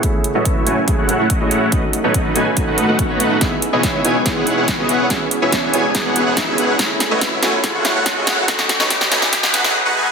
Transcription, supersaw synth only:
\new Staff \with { instrumentName = "Supersaw synth" } { \time 4/4 \key fis \dorian \tempo 4 = 142 <a e' fis' cis'' e''>16 r8 <a e' fis' cis'' dis''>16 <a e' fis' cis'' e''>8 <a e' fis' cis'' gis''>16 r16 <a e' fis' cis'' gis''>16 <a e' fis' cis'' fis''>8 <a e' fis' cis'' fis''>16 <a e' fis' cis'' dis''>16 <a e' fis' cis'' dis''>16 <a e' fis' cis'' fis''>8 | <a dis' fis' b' dis''>16 r8 <a dis' fis' b' cis''>16 <a dis' fis' b' dis''>8 <a dis' fis' b' gis''>16 r16 <a dis' fis' b' gis''>16 <a dis' fis' b' fis''>8 <a dis' fis' b' fis''>16 <a dis' fis' b' cis''>16 <a dis' fis' b' cis''>16 <a dis' fis' b' fis''>8 | <b e' gis' cis'' e''>16 r8 <b e' gis' cis'' dis''>16 <b e' gis' cis'' e''>8 <b e' gis' cis'' gis''>16 r16 <b e' gis' cis'' gis''>16 <b e' gis' cis'' fis''>8 <b e' gis' cis'' fis''>16 <b e' gis' cis'' dis''>16 <b e' gis' cis'' dis''>16 <b e' gis' cis'' fis''>8 | <b e' gis' cis'' e''>16 r8 <b e' gis' cis'' e''>16 <b e' gis' cis'' e''>8 <b e' gis' cis'' gis''>16 r16 <b e' gis' cis'' gis''>16 <b e' gis' cis'' fis''>8 <b e' gis' cis'' fis''>16 <b e' gis' cis'' e''>16 <b e' gis' cis'' e''>16 <b e' gis' cis'' fis''>8 |
<a e' fis' cis'' e''>16 r8 <a e' fis' cis'' dis''>16 <a e' fis' cis'' e''>8 <a e' fis' cis'' gis''>16 r16 <a e' fis' cis'' gis''>16 <a e' fis' cis'' fis''>8 <a e' fis' cis'' fis''>16 <a e' fis' cis'' dis''>16 <a e' fis' cis'' dis''>16 <a e' fis' cis'' fis''>8 | <a dis' fis' b' dis''>16 r8 <a dis' fis' b' cis''>16 <a dis' fis' b' dis''>8 <a dis' fis' b' gis''>16 r16 <a dis' fis' b' gis''>16 <a dis' fis' b' fis''>8 <a dis' fis' b' fis''>16 r16 <a dis' fis' b' fis''>16 <a dis' fis' b' gis''>16 r16 | }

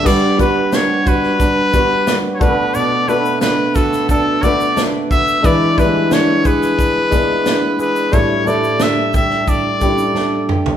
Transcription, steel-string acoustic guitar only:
\new Staff \with { instrumentName = "Steel-string acoustic guitar" } { \time 4/4 \key g \lydian \tempo 4 = 89 g8 b8 d'8 fis'8 d'8 b8 d'8 b,8 | b,8 a8 d'8 fis'8 d'8 a8 d'8 fis'8 | e8 b8 d'8 gis'8 d'8 b8 d'8 gis'8 | a,8 a8 d'8 g'8 d'8 a8 d'8 g'8 | }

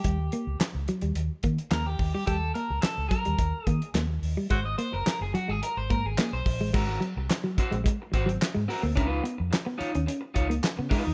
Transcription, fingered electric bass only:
\new Staff \with { instrumentName = "Fingered electric bass" } { \clef bass \time 4/4 \key aes \major \tempo 4 = 108 ees,8 r16 des,16 r16 des,16 r16 ees,16 ees,16 r16 ees16 r16 ees,8 ees,16 r16 | ees,8 r16 des,16 r16 des,16 r16 ees,16 ees,16 r16 ees16 r16 ees,8 ees,16 r16 | aes,,8 r16 ges,,16 r16 ges,,16 r16 aes,,16 r16 aes,,16 aes,16 aes,,16 r16 ces,16 bes,,16 a,,16 | aes,,8 r16 c,16 r8. bes,,16 r8 aes,,8 r16 aes,16 r16 d,16 |
des,8 r16 f,16 r8. ees,16 r8 des,8 r16 des16 r16 fes,16 | }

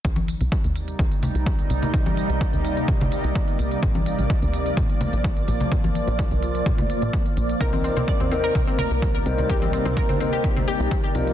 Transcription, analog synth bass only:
\new Staff \with { instrumentName = "Analog synth bass" } { \clef bass \time 4/4 \key c \minor \tempo 4 = 127 c,8. c,16 r16 ees,8. c,16 r8 c,8. c,16 r16 | c,8. c,16 r16 d,8. c,16 r8 c,16 r8 c,16 r16 | bes,,8. bes,,16 r16 d,8. bes,,16 r8 bes,,8. bes,,16 r16 | bes,,8. bes,,16 r16 c,8. bes,,16 r8 bes,,16 r8 bes,,16 r16 |
c,8. c,16 r16 ees,8. c,16 r8 c,8. c,16 r16 | c,8. c,16 r16 d,8. c,16 r8 c,16 r8 c,16 r16 | }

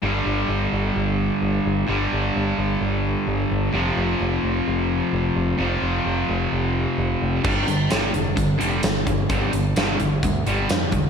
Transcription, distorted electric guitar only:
\new Staff \with { instrumentName = "Distorted electric guitar" } { \clef bass \time 4/4 \key f \lydian \tempo 4 = 130 <g, d g>1 | <g, d g>1 | <f, c f>1 | <f, c f>1 |
<g, d g>8 <g, d>8 <g, d g>8 <g, d>8 <g, d>8 <g, d g>8 <g, d>8 <g, d>8 | <g, d g>8 <g, d>8 <g, d g>8 <g, d>8 <g, d>8 <g, d g>8 <g, d>8 <g, d>8 | }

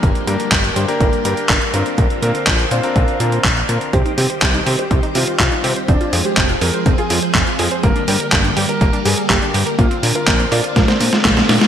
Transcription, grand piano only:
\new Staff \with { instrumentName = "Grand piano" } { \time 4/4 \key g \phrygian \tempo 4 = 123 r1 | r1 | g'16 r16 g'16 r4 g'8 r16 f'16 r16 f'8. r16 | d'8 r16 g'8 r16 bes'8 r16 aes'8 r4 r16 |
bes'16 r16 bes'16 r4 bes'8 r16 aes'16 r16 g'8. r16 | f'8 r16 bes'8 r16 d''8 r16 c''8 r4 r16 | }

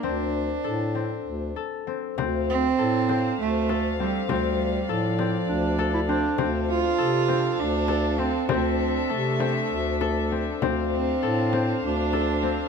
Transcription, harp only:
\new Staff \with { instrumentName = "Harp" } { \time 7/8 \key d \minor \tempo 4 = 99 c'4 a'8 c'4 a'8 c'8 | c'4 a'8 c'4 a'8 c'8 | c'4 a'8 c'4 a'8 c'8 | c'4 a'8 c'4 a'8 c'8 |
c'4 a'8 c'4 a'8 c'8 | c'4 a'8 c'4 a'8 c'8 | }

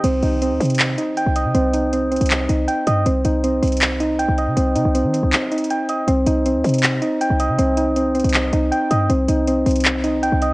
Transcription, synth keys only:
\new Staff \with { instrumentName = "Synth keys" } { \time 4/4 \key c \minor \tempo 4 = 159 c'8 ees'8 c'8 c'4 ees'8 g''8 ees''8 | c'8 ees'8 c'8 c'4 ees'8 g''8 ees''8 | c'8 ees'8 c'8 c'4 ees'8 g''8 ees''8 | c'8 ees'8 c'8 c'4 ees'8 g''8 ees''8 |
c'8 ees'8 c'8 c'4 ees'8 g''8 ees''8 | c'8 ees'8 c'8 c'4 ees'8 g''8 ees''8 | c'8 ees'8 c'8 c'4 ees'8 g''8 ees''8 | }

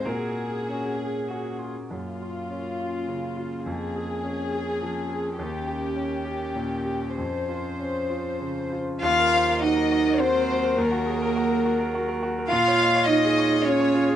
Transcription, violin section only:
\new Staff \with { instrumentName = "Violin section" } { \time 3/4 \key ees \dorian \tempo 4 = 103 aes'2~ aes'8 r8 | f'2. | aes'2. | g'2. |
c''2~ c''8 r8 | f''4 ees''4 c''4 | bes'2~ bes'8 r8 | f''4 ees''4 des''4 | }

